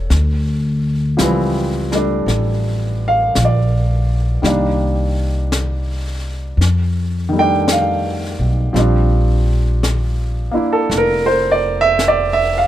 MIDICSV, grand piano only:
0, 0, Header, 1, 2, 480
1, 0, Start_track
1, 0, Tempo, 1081081
1, 45, Time_signature, 4, 2, 24, 8
1, 5627, End_track
2, 0, Start_track
2, 0, Title_t, "Grand piano"
2, 0, Program_c, 0, 0
2, 0, Control_c, 0, 64, 127
2, 0, Note_on_c, 0, 57, 51
2, 0, Note_on_c, 0, 58, 48
2, 0, Note_on_c, 0, 61, 52
2, 0, Note_on_c, 0, 69, 45
2, 0, Note_on_c, 0, 73, 66
2, 45, Note_off_c, 0, 58, 0
2, 48, Note_off_c, 0, 61, 0
2, 49, Note_off_c, 0, 57, 0
2, 50, Control_c, 0, 64, 0
2, 53, Note_off_c, 0, 73, 0
2, 132, Control_c, 0, 64, 127
2, 376, Note_off_c, 0, 69, 0
2, 520, Note_on_c, 0, 53, 57
2, 522, Note_on_c, 0, 55, 48
2, 533, Note_on_c, 0, 60, 53
2, 538, Note_on_c, 0, 52, 63
2, 843, Note_off_c, 0, 55, 0
2, 850, Note_on_c, 0, 55, 45
2, 858, Note_on_c, 0, 57, 42
2, 866, Note_on_c, 0, 62, 56
2, 1367, Note_on_c, 0, 77, 91
2, 1502, Note_off_c, 0, 77, 0
2, 1530, Note_on_c, 0, 74, 52
2, 1959, Note_off_c, 0, 55, 0
2, 1962, Note_on_c, 0, 51, 46
2, 1963, Note_off_c, 0, 53, 0
2, 1966, Note_on_c, 0, 55, 45
2, 1968, Note_off_c, 0, 57, 0
2, 1969, Note_off_c, 0, 60, 0
2, 1971, Control_c, 0, 64, 0
2, 1972, Note_off_c, 0, 52, 0
2, 1972, Note_off_c, 0, 62, 0
2, 1981, Note_on_c, 0, 58, 49
2, 1983, Note_on_c, 0, 62, 55
2, 2058, Control_c, 0, 64, 127
2, 2297, Note_off_c, 0, 74, 0
2, 2921, Note_off_c, 0, 51, 0
2, 2923, Note_off_c, 0, 55, 0
2, 2928, Control_c, 0, 64, 0
2, 2931, Note_off_c, 0, 58, 0
2, 2931, Note_off_c, 0, 62, 0
2, 2997, Control_c, 0, 64, 127
2, 3236, Note_on_c, 0, 51, 48
2, 3253, Note_on_c, 0, 55, 46
2, 3269, Note_on_c, 0, 57, 45
2, 3282, Note_on_c, 0, 79, 86
2, 3287, Note_on_c, 0, 62, 58
2, 3417, Note_off_c, 0, 79, 0
2, 3427, Note_on_c, 0, 77, 77
2, 3873, Note_off_c, 0, 51, 0
2, 3875, Note_off_c, 0, 55, 0
2, 3876, Note_on_c, 0, 53, 55
2, 3882, Note_on_c, 0, 55, 49
2, 3886, Control_c, 0, 64, 0
2, 3890, Note_off_c, 0, 57, 0
2, 3890, Note_on_c, 0, 60, 51
2, 3893, Note_off_c, 0, 62, 0
2, 3900, Note_on_c, 0, 62, 59
2, 3966, Control_c, 0, 64, 127
2, 4201, Note_off_c, 0, 77, 0
2, 4668, Note_on_c, 0, 58, 46
2, 4672, Note_off_c, 0, 62, 0
2, 4678, Note_on_c, 0, 62, 43
2, 4683, Note_on_c, 0, 64, 52
2, 4762, Note_on_c, 0, 69, 78
2, 4837, Note_off_c, 0, 69, 0
2, 4873, Note_on_c, 0, 70, 85
2, 5000, Note_on_c, 0, 72, 70
2, 5016, Note_off_c, 0, 70, 0
2, 5113, Note_on_c, 0, 74, 79
2, 5161, Note_off_c, 0, 72, 0
2, 5214, Note_off_c, 0, 74, 0
2, 5244, Note_on_c, 0, 76, 99
2, 5319, Note_off_c, 0, 76, 0
2, 5364, Note_on_c, 0, 74, 79
2, 5476, Note_on_c, 0, 76, 90
2, 5503, Note_off_c, 0, 74, 0
2, 5585, Note_on_c, 0, 77, 86
2, 5627, Note_off_c, 0, 53, 0
2, 5627, Note_off_c, 0, 55, 0
2, 5627, Note_off_c, 0, 58, 0
2, 5627, Note_off_c, 0, 60, 0
2, 5627, Note_off_c, 0, 62, 0
2, 5627, Note_off_c, 0, 64, 0
2, 5627, Note_off_c, 0, 76, 0
2, 5627, Note_off_c, 0, 77, 0
2, 5627, End_track
0, 0, End_of_file